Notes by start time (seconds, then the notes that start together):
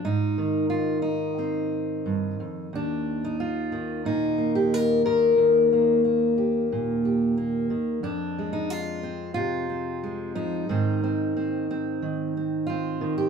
0.05 G#2 D#4
0.38 D#3
0.70 F4
1.02 D#4
1.38 C4
2.06 G2
2.40 F2
2.73 D#2 D4
3.24 D#4
3.40 F4
3.72 D#3
4.05 A#2 D#4
4.38 A#3
4.55 G4
4.74 A#4
5.05 D#3 A#4
5.38 D#2
5.72 A#3
6.05 A#3
6.38 G4
6.72 A#2
7.05 G4
7.38 A#3
7.70 D#3
8.03 F2 D4
8.39 G#3
8.53 D#4
8.70 F4
9.03 C4
9.34 C3 F4
9.69 C4
10.04 G#3
10.35 F3 D#4
10.69 G#2 D#3 C4
11.04 C4
11.37 C4
11.71 C4
12.02 D#3
12.37 C4
12.67 C4 F4
13.01 D#3
13.18 G4